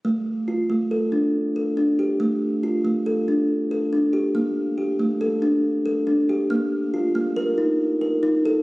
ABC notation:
X:1
M:5/4
L:1/8
Q:1/4=140
K:Dphr
V:1 name="Kalimba"
A,2 F A, A D2 A D G | A,2 F A, A D2 A D G | B,2 G A, A D2 A D G | B,2 F B, B E2 B E A |]